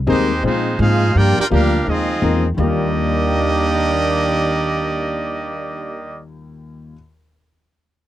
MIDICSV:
0, 0, Header, 1, 7, 480
1, 0, Start_track
1, 0, Key_signature, -3, "major"
1, 0, Tempo, 356506
1, 1542, Time_signature, 4, 2, 24, 8
1, 10874, End_track
2, 0, Start_track
2, 0, Title_t, "Trumpet section"
2, 0, Program_c, 0, 61
2, 123, Note_on_c, 0, 63, 82
2, 124, Note_on_c, 0, 56, 84
2, 126, Note_on_c, 0, 72, 90
2, 132, Note_on_c, 0, 67, 80
2, 559, Note_off_c, 0, 63, 0
2, 560, Note_off_c, 0, 56, 0
2, 561, Note_off_c, 0, 72, 0
2, 564, Note_off_c, 0, 67, 0
2, 590, Note_on_c, 0, 65, 81
2, 592, Note_on_c, 0, 56, 78
2, 596, Note_on_c, 0, 72, 90
2, 599, Note_on_c, 0, 63, 82
2, 1033, Note_off_c, 0, 56, 0
2, 1033, Note_off_c, 0, 65, 0
2, 1036, Note_off_c, 0, 72, 0
2, 1037, Note_off_c, 0, 63, 0
2, 1076, Note_on_c, 0, 77, 106
2, 1078, Note_on_c, 0, 68, 93
2, 1082, Note_on_c, 0, 72, 88
2, 1083, Note_on_c, 0, 63, 84
2, 1516, Note_off_c, 0, 77, 0
2, 1517, Note_off_c, 0, 68, 0
2, 1519, Note_off_c, 0, 72, 0
2, 1520, Note_off_c, 0, 63, 0
2, 1558, Note_on_c, 0, 79, 108
2, 1559, Note_on_c, 0, 65, 96
2, 1560, Note_on_c, 0, 74, 86
2, 1564, Note_on_c, 0, 70, 104
2, 1862, Note_off_c, 0, 65, 0
2, 1862, Note_off_c, 0, 79, 0
2, 1863, Note_off_c, 0, 74, 0
2, 1864, Note_off_c, 0, 70, 0
2, 1882, Note_on_c, 0, 74, 98
2, 1882, Note_on_c, 0, 79, 118
2, 1886, Note_on_c, 0, 70, 102
2, 1887, Note_on_c, 0, 65, 105
2, 1951, Note_off_c, 0, 74, 0
2, 1952, Note_off_c, 0, 79, 0
2, 1955, Note_off_c, 0, 70, 0
2, 1956, Note_off_c, 0, 65, 0
2, 2057, Note_on_c, 0, 62, 96
2, 2060, Note_on_c, 0, 67, 97
2, 2066, Note_on_c, 0, 70, 99
2, 2070, Note_on_c, 0, 77, 102
2, 2488, Note_off_c, 0, 62, 0
2, 2489, Note_off_c, 0, 67, 0
2, 2492, Note_off_c, 0, 70, 0
2, 2495, Note_off_c, 0, 77, 0
2, 2533, Note_on_c, 0, 60, 83
2, 2539, Note_on_c, 0, 65, 89
2, 2541, Note_on_c, 0, 75, 93
2, 2542, Note_on_c, 0, 68, 84
2, 3310, Note_off_c, 0, 60, 0
2, 3313, Note_off_c, 0, 65, 0
2, 3314, Note_off_c, 0, 68, 0
2, 3314, Note_off_c, 0, 75, 0
2, 3503, Note_on_c, 0, 67, 84
2, 3503, Note_on_c, 0, 74, 88
2, 3505, Note_on_c, 0, 58, 73
2, 3508, Note_on_c, 0, 75, 102
2, 8347, Note_off_c, 0, 67, 0
2, 8347, Note_off_c, 0, 74, 0
2, 8348, Note_off_c, 0, 58, 0
2, 8349, Note_off_c, 0, 75, 0
2, 10874, End_track
3, 0, Start_track
3, 0, Title_t, "Grand piano"
3, 0, Program_c, 1, 0
3, 92, Note_on_c, 1, 60, 84
3, 99, Note_on_c, 1, 63, 76
3, 103, Note_on_c, 1, 67, 70
3, 104, Note_on_c, 1, 68, 83
3, 111, Note_on_c, 1, 70, 92
3, 376, Note_off_c, 1, 60, 0
3, 380, Note_off_c, 1, 63, 0
3, 382, Note_off_c, 1, 67, 0
3, 382, Note_off_c, 1, 68, 0
3, 386, Note_off_c, 1, 70, 0
3, 576, Note_on_c, 1, 60, 56
3, 581, Note_on_c, 1, 63, 48
3, 588, Note_on_c, 1, 65, 54
3, 593, Note_on_c, 1, 68, 54
3, 599, Note_on_c, 1, 72, 61
3, 859, Note_off_c, 1, 60, 0
3, 861, Note_off_c, 1, 63, 0
3, 865, Note_off_c, 1, 65, 0
3, 867, Note_off_c, 1, 68, 0
3, 870, Note_off_c, 1, 72, 0
3, 2023, Note_on_c, 1, 58, 77
3, 2027, Note_on_c, 1, 62, 64
3, 2040, Note_on_c, 1, 67, 70
3, 2041, Note_on_c, 1, 65, 74
3, 2046, Note_on_c, 1, 70, 82
3, 2303, Note_off_c, 1, 58, 0
3, 2305, Note_off_c, 1, 62, 0
3, 2312, Note_off_c, 1, 65, 0
3, 2312, Note_off_c, 1, 67, 0
3, 2314, Note_off_c, 1, 70, 0
3, 2983, Note_on_c, 1, 60, 65
3, 2994, Note_on_c, 1, 63, 59
3, 2996, Note_on_c, 1, 65, 56
3, 3002, Note_on_c, 1, 68, 56
3, 3007, Note_on_c, 1, 70, 79
3, 3264, Note_off_c, 1, 60, 0
3, 3269, Note_off_c, 1, 63, 0
3, 3270, Note_off_c, 1, 65, 0
3, 3273, Note_off_c, 1, 68, 0
3, 3275, Note_off_c, 1, 70, 0
3, 3457, Note_on_c, 1, 39, 62
3, 3465, Note_on_c, 1, 51, 55
3, 3475, Note_on_c, 1, 58, 62
3, 3485, Note_on_c, 1, 65, 56
3, 3497, Note_on_c, 1, 67, 71
3, 9320, Note_off_c, 1, 39, 0
3, 9325, Note_off_c, 1, 51, 0
3, 9329, Note_off_c, 1, 58, 0
3, 9334, Note_off_c, 1, 65, 0
3, 9340, Note_off_c, 1, 67, 0
3, 10874, End_track
4, 0, Start_track
4, 0, Title_t, "Trombone section"
4, 0, Program_c, 2, 61
4, 95, Note_on_c, 2, 67, 69
4, 101, Note_on_c, 2, 51, 69
4, 103, Note_on_c, 2, 60, 80
4, 544, Note_off_c, 2, 67, 0
4, 547, Note_off_c, 2, 51, 0
4, 549, Note_off_c, 2, 60, 0
4, 582, Note_on_c, 2, 56, 73
4, 582, Note_on_c, 2, 60, 74
4, 584, Note_on_c, 2, 53, 78
4, 1028, Note_off_c, 2, 56, 0
4, 1028, Note_off_c, 2, 60, 0
4, 1029, Note_off_c, 2, 53, 0
4, 1055, Note_on_c, 2, 53, 87
4, 1059, Note_on_c, 2, 65, 89
4, 1062, Note_on_c, 2, 56, 84
4, 1505, Note_off_c, 2, 53, 0
4, 1507, Note_off_c, 2, 65, 0
4, 1508, Note_off_c, 2, 56, 0
4, 1550, Note_on_c, 2, 67, 107
4, 1556, Note_on_c, 2, 62, 93
4, 1559, Note_on_c, 2, 58, 98
4, 1843, Note_off_c, 2, 58, 0
4, 1846, Note_off_c, 2, 62, 0
4, 1852, Note_off_c, 2, 67, 0
4, 1859, Note_on_c, 2, 58, 79
4, 1862, Note_on_c, 2, 62, 91
4, 1868, Note_on_c, 2, 67, 92
4, 1934, Note_off_c, 2, 58, 0
4, 1936, Note_off_c, 2, 62, 0
4, 1941, Note_off_c, 2, 67, 0
4, 2029, Note_on_c, 2, 58, 83
4, 2030, Note_on_c, 2, 62, 98
4, 2030, Note_on_c, 2, 65, 91
4, 2473, Note_off_c, 2, 58, 0
4, 2473, Note_off_c, 2, 62, 0
4, 2473, Note_off_c, 2, 65, 0
4, 2508, Note_on_c, 2, 53, 84
4, 2509, Note_on_c, 2, 56, 69
4, 2510, Note_on_c, 2, 63, 76
4, 3297, Note_off_c, 2, 53, 0
4, 3298, Note_off_c, 2, 56, 0
4, 3298, Note_off_c, 2, 63, 0
4, 3473, Note_on_c, 2, 51, 112
4, 3473, Note_on_c, 2, 58, 106
4, 3474, Note_on_c, 2, 67, 110
4, 3475, Note_on_c, 2, 62, 109
4, 8332, Note_off_c, 2, 51, 0
4, 8332, Note_off_c, 2, 58, 0
4, 8332, Note_off_c, 2, 67, 0
4, 8333, Note_off_c, 2, 62, 0
4, 10874, End_track
5, 0, Start_track
5, 0, Title_t, "Hollow-body jazz guitar"
5, 0, Program_c, 3, 26
5, 103, Note_on_c, 3, 44, 75
5, 112, Note_on_c, 3, 55, 67
5, 119, Note_on_c, 3, 60, 74
5, 127, Note_on_c, 3, 63, 69
5, 430, Note_off_c, 3, 44, 0
5, 435, Note_off_c, 3, 55, 0
5, 438, Note_off_c, 3, 60, 0
5, 442, Note_off_c, 3, 63, 0
5, 573, Note_on_c, 3, 46, 44
5, 592, Note_on_c, 3, 56, 53
5, 604, Note_on_c, 3, 60, 47
5, 614, Note_on_c, 3, 63, 56
5, 905, Note_off_c, 3, 46, 0
5, 915, Note_off_c, 3, 56, 0
5, 921, Note_off_c, 3, 60, 0
5, 926, Note_off_c, 3, 63, 0
5, 1065, Note_on_c, 3, 46, 63
5, 1073, Note_on_c, 3, 56, 70
5, 1083, Note_on_c, 3, 60, 67
5, 1086, Note_on_c, 3, 63, 81
5, 1392, Note_off_c, 3, 46, 0
5, 1395, Note_off_c, 3, 56, 0
5, 1400, Note_off_c, 3, 60, 0
5, 1402, Note_off_c, 3, 63, 0
5, 1547, Note_on_c, 3, 43, 58
5, 1562, Note_on_c, 3, 53, 61
5, 1572, Note_on_c, 3, 58, 58
5, 1587, Note_on_c, 3, 62, 55
5, 1873, Note_off_c, 3, 43, 0
5, 1880, Note_off_c, 3, 53, 0
5, 1885, Note_off_c, 3, 58, 0
5, 1893, Note_off_c, 3, 62, 0
5, 2025, Note_on_c, 3, 43, 69
5, 2028, Note_on_c, 3, 53, 68
5, 2039, Note_on_c, 3, 58, 72
5, 2045, Note_on_c, 3, 62, 71
5, 2352, Note_off_c, 3, 43, 0
5, 2354, Note_off_c, 3, 53, 0
5, 2359, Note_off_c, 3, 58, 0
5, 2362, Note_off_c, 3, 62, 0
5, 2504, Note_on_c, 3, 46, 44
5, 2514, Note_on_c, 3, 51, 49
5, 2524, Note_on_c, 3, 56, 55
5, 2535, Note_on_c, 3, 60, 49
5, 2832, Note_off_c, 3, 46, 0
5, 2837, Note_off_c, 3, 51, 0
5, 2842, Note_off_c, 3, 56, 0
5, 2848, Note_off_c, 3, 60, 0
5, 2976, Note_on_c, 3, 46, 73
5, 2991, Note_on_c, 3, 51, 70
5, 2993, Note_on_c, 3, 56, 67
5, 3002, Note_on_c, 3, 60, 76
5, 3308, Note_off_c, 3, 46, 0
5, 3316, Note_off_c, 3, 51, 0
5, 3316, Note_off_c, 3, 56, 0
5, 3321, Note_off_c, 3, 60, 0
5, 3424, Note_on_c, 3, 51, 66
5, 3486, Note_on_c, 3, 55, 76
5, 3536, Note_on_c, 3, 58, 75
5, 9304, Note_off_c, 3, 51, 0
5, 9335, Note_off_c, 3, 55, 0
5, 9360, Note_off_c, 3, 58, 0
5, 10874, End_track
6, 0, Start_track
6, 0, Title_t, "Upright bass"
6, 0, Program_c, 4, 32
6, 97, Note_on_c, 4, 39, 102
6, 564, Note_off_c, 4, 39, 0
6, 584, Note_on_c, 4, 46, 88
6, 1048, Note_off_c, 4, 46, 0
6, 1063, Note_on_c, 4, 44, 107
6, 1528, Note_off_c, 4, 44, 0
6, 1552, Note_on_c, 4, 43, 90
6, 1837, Note_off_c, 4, 43, 0
6, 2038, Note_on_c, 4, 38, 106
6, 2496, Note_off_c, 4, 38, 0
6, 2514, Note_on_c, 4, 39, 76
6, 2975, Note_off_c, 4, 39, 0
6, 2990, Note_on_c, 4, 40, 103
6, 3453, Note_off_c, 4, 40, 0
6, 3469, Note_on_c, 4, 39, 107
6, 9273, Note_off_c, 4, 39, 0
6, 10874, End_track
7, 0, Start_track
7, 0, Title_t, "Muted upright bass strokes"
7, 1868, Note_on_c, 9, 29, 45
7, 2003, Note_off_c, 9, 29, 0
7, 10874, End_track
0, 0, End_of_file